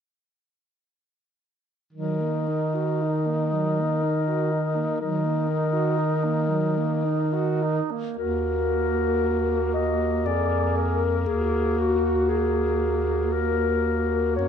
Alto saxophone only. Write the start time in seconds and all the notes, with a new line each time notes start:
1.94 F#3
2.20 A#3
2.48 D#4
2.74 F#4
3.02 D#4
3.26 A#3
3.52 F#3
3.80 A#3
4.02 D#4
4.28 F#4
4.51 D#4
4.75 A#3
5.02 F#3
5.24 A#3
5.48 D#4
5.73 F#4
5.98 D#4
6.24 A#3
6.49 F#3
6.77 A#3
7.05 D#4
7.33 F#4
7.62 D#4
7.91 A#3
8.18 F#4
10.27 G#4
11.29 F#4